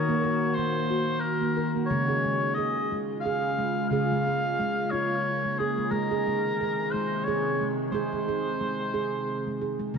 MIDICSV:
0, 0, Header, 1, 4, 480
1, 0, Start_track
1, 0, Tempo, 669643
1, 1367, Time_signature, 3, 2, 24, 8
1, 7154, End_track
2, 0, Start_track
2, 0, Title_t, "Oboe"
2, 0, Program_c, 0, 68
2, 0, Note_on_c, 0, 73, 101
2, 390, Note_on_c, 0, 72, 98
2, 400, Note_off_c, 0, 73, 0
2, 862, Note_on_c, 0, 70, 85
2, 873, Note_off_c, 0, 72, 0
2, 1245, Note_off_c, 0, 70, 0
2, 1334, Note_on_c, 0, 73, 100
2, 1822, Note_on_c, 0, 75, 94
2, 1833, Note_off_c, 0, 73, 0
2, 2126, Note_off_c, 0, 75, 0
2, 2300, Note_on_c, 0, 77, 102
2, 2765, Note_off_c, 0, 77, 0
2, 2791, Note_on_c, 0, 77, 110
2, 3515, Note_on_c, 0, 73, 104
2, 3526, Note_off_c, 0, 77, 0
2, 4003, Note_on_c, 0, 68, 82
2, 4014, Note_off_c, 0, 73, 0
2, 4237, Note_on_c, 0, 70, 99
2, 4248, Note_off_c, 0, 68, 0
2, 4953, Note_on_c, 0, 72, 90
2, 4963, Note_off_c, 0, 70, 0
2, 5191, Note_on_c, 0, 73, 85
2, 5202, Note_off_c, 0, 72, 0
2, 5492, Note_off_c, 0, 73, 0
2, 5677, Note_on_c, 0, 72, 88
2, 6857, Note_off_c, 0, 72, 0
2, 7154, End_track
3, 0, Start_track
3, 0, Title_t, "Ambient pad"
3, 0, Program_c, 1, 92
3, 0, Note_on_c, 1, 51, 80
3, 0, Note_on_c, 1, 58, 71
3, 0, Note_on_c, 1, 66, 90
3, 1339, Note_off_c, 1, 51, 0
3, 1339, Note_off_c, 1, 66, 0
3, 1340, Note_off_c, 1, 58, 0
3, 1361, Note_on_c, 1, 56, 69
3, 1368, Note_on_c, 1, 49, 78
3, 1370, Note_on_c, 1, 65, 84
3, 2789, Note_off_c, 1, 56, 0
3, 2812, Note_on_c, 1, 58, 72
3, 4218, Note_off_c, 1, 49, 0
3, 4219, Note_off_c, 1, 65, 0
3, 4235, Note_off_c, 1, 58, 0
3, 4244, Note_on_c, 1, 51, 85
3, 4246, Note_on_c, 1, 56, 68
3, 4247, Note_on_c, 1, 48, 89
3, 7102, Note_off_c, 1, 51, 0
3, 7103, Note_off_c, 1, 48, 0
3, 7103, Note_off_c, 1, 56, 0
3, 7154, End_track
4, 0, Start_track
4, 0, Title_t, "Handpan"
4, 0, Program_c, 2, 114
4, 0, Note_on_c, 2, 51, 91
4, 62, Note_on_c, 2, 58, 75
4, 169, Note_off_c, 2, 58, 0
4, 171, Note_on_c, 2, 70, 72
4, 409, Note_off_c, 2, 70, 0
4, 413, Note_on_c, 2, 58, 82
4, 648, Note_on_c, 2, 66, 69
4, 650, Note_off_c, 2, 51, 0
4, 650, Note_off_c, 2, 58, 0
4, 887, Note_off_c, 2, 66, 0
4, 1013, Note_on_c, 2, 58, 60
4, 1124, Note_off_c, 2, 58, 0
4, 1124, Note_on_c, 2, 70, 66
4, 1256, Note_off_c, 2, 70, 0
4, 1258, Note_on_c, 2, 58, 66
4, 1363, Note_on_c, 2, 56, 81
4, 1365, Note_on_c, 2, 49, 92
4, 1367, Note_off_c, 2, 58, 0
4, 1495, Note_on_c, 2, 68, 72
4, 1496, Note_off_c, 2, 56, 0
4, 1605, Note_off_c, 2, 68, 0
4, 1610, Note_on_c, 2, 56, 74
4, 1848, Note_off_c, 2, 56, 0
4, 1849, Note_on_c, 2, 68, 74
4, 2088, Note_off_c, 2, 68, 0
4, 2090, Note_off_c, 2, 49, 0
4, 2093, Note_on_c, 2, 56, 68
4, 2330, Note_off_c, 2, 56, 0
4, 2334, Note_on_c, 2, 68, 82
4, 2570, Note_off_c, 2, 68, 0
4, 2571, Note_on_c, 2, 56, 70
4, 2802, Note_on_c, 2, 49, 93
4, 2809, Note_off_c, 2, 56, 0
4, 2814, Note_on_c, 2, 68, 82
4, 2941, Note_off_c, 2, 68, 0
4, 2953, Note_on_c, 2, 56, 74
4, 3054, Note_off_c, 2, 56, 0
4, 3062, Note_on_c, 2, 68, 70
4, 3294, Note_off_c, 2, 68, 0
4, 3294, Note_on_c, 2, 56, 84
4, 3528, Note_off_c, 2, 49, 0
4, 3530, Note_off_c, 2, 56, 0
4, 3534, Note_on_c, 2, 65, 77
4, 3770, Note_off_c, 2, 65, 0
4, 3904, Note_on_c, 2, 56, 66
4, 4010, Note_off_c, 2, 56, 0
4, 4016, Note_on_c, 2, 68, 73
4, 4142, Note_off_c, 2, 68, 0
4, 4142, Note_on_c, 2, 56, 70
4, 4231, Note_off_c, 2, 56, 0
4, 4239, Note_on_c, 2, 56, 101
4, 4381, Note_on_c, 2, 68, 74
4, 4485, Note_off_c, 2, 56, 0
4, 4489, Note_off_c, 2, 68, 0
4, 4494, Note_on_c, 2, 56, 81
4, 4730, Note_off_c, 2, 56, 0
4, 4738, Note_on_c, 2, 68, 79
4, 4973, Note_off_c, 2, 68, 0
4, 4977, Note_on_c, 2, 56, 76
4, 5212, Note_off_c, 2, 56, 0
4, 5216, Note_on_c, 2, 68, 84
4, 5452, Note_off_c, 2, 68, 0
4, 5456, Note_on_c, 2, 56, 71
4, 5671, Note_off_c, 2, 56, 0
4, 5679, Note_on_c, 2, 56, 94
4, 5696, Note_on_c, 2, 68, 90
4, 5818, Note_off_c, 2, 56, 0
4, 5823, Note_off_c, 2, 68, 0
4, 5826, Note_on_c, 2, 56, 72
4, 5932, Note_off_c, 2, 56, 0
4, 5937, Note_on_c, 2, 68, 77
4, 6170, Note_on_c, 2, 56, 74
4, 6173, Note_off_c, 2, 68, 0
4, 6408, Note_on_c, 2, 68, 80
4, 6410, Note_off_c, 2, 56, 0
4, 6649, Note_off_c, 2, 68, 0
4, 6787, Note_on_c, 2, 56, 60
4, 6892, Note_on_c, 2, 68, 65
4, 6894, Note_off_c, 2, 56, 0
4, 7020, Note_on_c, 2, 56, 72
4, 7023, Note_off_c, 2, 68, 0
4, 7119, Note_off_c, 2, 56, 0
4, 7125, Note_on_c, 2, 49, 83
4, 7128, Note_on_c, 2, 56, 81
4, 7154, Note_off_c, 2, 49, 0
4, 7154, Note_off_c, 2, 56, 0
4, 7154, End_track
0, 0, End_of_file